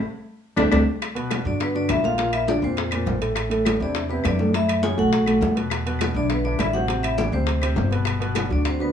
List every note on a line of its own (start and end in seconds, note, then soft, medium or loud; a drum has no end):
0.56 0.68 D2 loud
0.56 0.66 A3 loud
0.56 0.66 C4 loud
0.56 0.64 D4 loud
0.56 0.66 D4 loud
0.56 cowbell loud
0.56 high conga loud
0.56 high timbale loud
0.56 claves loud
0.71 0.83 D2 loud
0.71 0.81 A3 loud
0.71 0.81 C4 medium
0.71 0.78 D4 loud
0.71 0.81 D4 medium
0.71 cowbell loud
0.71 high conga loud
0.71 high timbale loud
0.71 claves loud
1.02 high bongo medium
1.02 high conga soft
1.02 high timbale medium
1.02 claves medium
1.15 1.39 B2 medium
1.15 1.40 B3 medium
1.15 1.40 B4 medium
1.15 high conga soft
1.15 high timbale medium
1.30 high bongo medium
1.30 high conga loud
1.30 high timbale loud
1.30 low timbale medium
1.30 claves medium
1.45 1.86 G2 medium
1.45 1.69 D3 medium
1.45 1.69 D4 medium
1.45 1.60 D4 medium
1.45 1.70 F#4 medium
1.45 1.61 D5 medium
1.45 high bongo soft
1.45 high conga soft
1.60 1.75 B3 medium
1.60 1.76 B4 medium
1.60 high bongo medium
1.60 high conga soft
1.60 high timbale medium
1.75 1.99 D3 medium
1.75 1.99 D4 medium
1.75 1.82 D4 medium
1.75 1.99 F#4 medium
1.75 1.82 D5 medium
1.75 high bongo soft
1.75 high conga soft
1.89 2.57 A#1 medium
1.89 2.03 E4 medium
1.89 2.03 E5 loud
1.89 high bongo soft
1.89 low bongo medium
1.89 high conga medium
1.89 high timbale loud
1.89 low timbale medium
1.89 claves medium
2.03 2.15 A#2 medium
2.03 2.16 A#3 medium
2.03 2.32 F4 medium
2.03 2.16 A#4 medium
2.03 2.32 F5 loud
2.03 high bongo soft
2.03 high conga medium
2.17 2.42 A#2 medium
2.17 2.42 A#3 medium
2.17 2.42 A#4 medium
2.17 high bongo medium
2.17 high conga soft
2.17 high timbale medium
2.33 2.46 E4 medium
2.33 2.48 E5 medium
2.33 high conga soft
2.33 high timbale medium
2.33 claves medium
2.47 2.60 D3 medium
2.47 2.61 D4 medium
2.47 2.60 D4 medium
2.47 2.60 F4 medium
2.47 2.63 D5 medium
2.47 high bongo medium
2.47 high conga loud
2.47 low timbale medium
2.62 3.03 F2 medium
2.62 2.87 A#2 medium
2.62 2.87 A#3 medium
2.62 3.18 C4 medium
2.62 2.87 A#4 medium
2.62 3.18 C5 medium
2.62 high bongo soft
2.62 high conga soft
2.77 high bongo medium
2.77 high conga soft
2.77 high timbale medium
2.91 3.16 A#2 medium
2.91 3.16 A#3 medium
2.91 3.17 A#4 medium
2.91 high bongo soft
2.91 high conga soft
2.91 high timbale medium
2.91 claves medium
3.06 3.75 A1 medium
3.06 high bongo soft
3.06 low bongo medium
3.06 high conga medium
3.06 low timbale medium
3.21 3.46 A2 medium
3.21 3.46 A3 medium
3.21 3.46 A4 medium
3.21 high bongo soft
3.21 high conga soft
3.21 high timbale medium
3.35 high bongo medium
3.35 high conga soft
3.35 high timbale medium
3.35 claves medium
3.50 3.74 A2 medium
3.50 3.75 A3 medium
3.50 3.75 A4 medium
3.50 high conga soft
3.50 high timbale medium
3.65 high bongo medium
3.65 high conga medium
3.65 high timbale loud
3.65 low timbale medium
3.65 claves medium
3.79 4.21 E2 medium
3.79 4.04 C3 medium
3.79 4.05 C4 medium
3.79 4.08 D4 medium
3.79 4.05 E4 medium
3.79 4.12 D5 medium
3.79 high bongo soft
3.79 high conga soft
3.95 high bongo medium
3.95 high conga soft
3.95 high timbale medium
4.09 4.34 C3 medium
4.09 4.24 B3 medium
4.09 4.34 C4 medium
4.09 4.34 E4 medium
4.09 4.24 B4 medium
4.09 high bongo soft
4.09 high conga soft
4.24 4.93 F#2 medium
4.24 4.52 D4 medium
4.24 4.53 D5 medium
4.24 high bongo soft
4.24 low bongo medium
4.24 high conga medium
4.24 high timbale medium
4.24 low timbale medium
4.24 claves medium
4.39 4.51 A2 medium
4.39 4.52 A3 medium
4.39 4.52 A4 medium
4.39 high bongo soft
4.39 high conga medium
4.53 4.78 A2 medium
4.53 4.78 A3 medium
4.53 4.81 E4 medium
4.53 4.78 A4 medium
4.53 4.82 E5 loud
4.53 high bongo medium
4.53 high conga soft
4.53 high timbale medium
4.69 high conga soft
4.69 high timbale loud
4.69 claves medium
4.83 4.95 C#3 medium
4.83 4.96 C#4 medium
4.83 4.95 E4 medium
4.83 4.97 G#4 medium
4.83 4.99 G#5 medium
4.83 high bongo medium
4.83 high conga medium
4.83 low timbale medium
4.97 5.39 B1 medium
4.97 5.22 A2 medium
4.97 5.22 A3 medium
4.97 5.53 F#4 medium
4.97 5.22 A4 medium
4.97 5.53 F#5 medium
4.97 high bongo soft
4.97 high conga soft
5.13 high bongo medium
5.13 high timbale medium
5.26 5.51 A2 medium
5.26 5.52 A3 medium
5.26 5.52 A4 medium
5.26 high bongo soft
5.26 high conga soft
5.26 high timbale medium
5.26 claves medium
5.41 6.10 E2 medium
5.41 high bongo soft
5.41 low bongo medium
5.41 high conga medium
5.41 low timbale medium
5.55 5.80 B2 medium
5.55 5.80 B3 medium
5.55 5.81 B4 medium
5.55 high bongo soft
5.55 high conga soft
5.55 high timbale medium
5.70 high bongo medium
5.70 high conga soft
5.70 high timbale medium
5.70 claves medium
5.86 6.10 B2 medium
5.86 6.11 B3 medium
5.86 6.11 B4 medium
5.86 high conga soft
5.86 high timbale medium
5.99 high bongo medium
5.99 high conga loud
5.99 high timbale medium
5.99 low timbale medium
5.99 claves medium
6.14 6.56 B1 medium
6.14 6.40 D3 medium
6.14 6.40 D4 medium
6.14 6.30 D4 medium
6.14 6.40 E4 medium
6.14 6.31 D5 medium
6.14 high bongo soft
6.14 high conga soft
6.30 6.38 B3 medium
6.30 6.39 B4 medium
6.30 high bongo medium
6.30 high conga soft
6.30 high timbale medium
6.44 6.69 D3 medium
6.44 6.69 D4 medium
6.44 6.59 D4 medium
6.44 6.69 E4 medium
6.44 6.59 D5 medium
6.44 high bongo soft
6.44 high conga soft
6.59 7.27 A1 loud
6.59 6.67 E4 medium
6.59 6.67 E5 medium
6.59 high bongo soft
6.59 low bongo medium
6.59 high conga medium
6.59 high timbale medium
6.59 low timbale medium
6.59 claves medium
6.73 6.86 C3 medium
6.73 6.86 C4 medium
6.73 7.02 F#4 medium
6.73 6.87 C5 medium
6.73 7.04 F#5 loud
6.73 high bongo soft
6.73 high conga medium
6.88 7.13 C3 medium
6.88 7.13 C4 medium
6.88 7.14 C5 medium
6.88 high bongo medium
6.88 high conga soft
6.88 high timbale medium
7.03 7.18 E4 medium
7.03 7.17 E5 loud
7.03 high conga soft
7.03 high timbale medium
7.03 claves medium
7.18 7.31 E3 medium
7.18 7.32 D4 medium
7.18 7.31 E4 medium
7.18 7.31 G4 medium
7.18 7.32 D5 medium
7.18 high bongo medium
7.18 high conga loud
7.18 low timbale medium
7.32 7.74 D2 medium
7.32 7.58 C3 medium
7.32 7.88 C4 medium
7.32 7.58 C4 medium
7.32 7.88 C5 medium
7.32 7.58 C5 medium
7.32 high bongo soft
7.32 high conga soft
7.47 high bongo medium
7.47 high conga soft
7.47 high timbale medium
7.62 7.87 C3 medium
7.62 7.87 C4 medium
7.62 7.87 C5 medium
7.62 high bongo soft
7.62 high conga soft
7.62 high timbale medium
7.62 claves medium
7.76 8.45 G1 medium
7.76 high bongo soft
7.76 low bongo medium
7.76 high conga medium
7.76 low timbale medium
7.91 8.16 B2 medium
7.91 8.16 B3 medium
7.91 8.16 B4 medium
7.91 high bongo soft
7.91 high conga soft
7.91 high timbale medium
8.05 high bongo medium
8.05 high conga soft
8.05 high timbale medium
8.05 claves medium
8.20 8.45 B2 medium
8.20 8.45 B3 medium
8.20 8.45 B4 medium
8.20 high conga soft
8.20 high timbale medium
8.35 high bongo medium
8.35 high conga medium
8.35 high timbale loud
8.35 low timbale medium
8.35 claves medium
8.49 8.92 D2 medium
8.49 8.74 D3 medium
8.49 8.74 D4 medium
8.49 8.65 D4 medium
8.49 8.74 F#4 medium
8.49 8.67 D5 medium
8.49 high bongo soft
8.49 high conga soft
8.65 8.80 C4 medium
8.65 8.80 C5 medium
8.65 high bongo medium
8.65 high conga soft
8.65 high timbale medium
8.79 8.92 D3 medium
8.79 8.88 B3 medium
8.79 8.92 D4 medium
8.79 8.92 F#4 medium
8.79 8.88 B4 medium
8.79 high bongo soft
8.79 high conga soft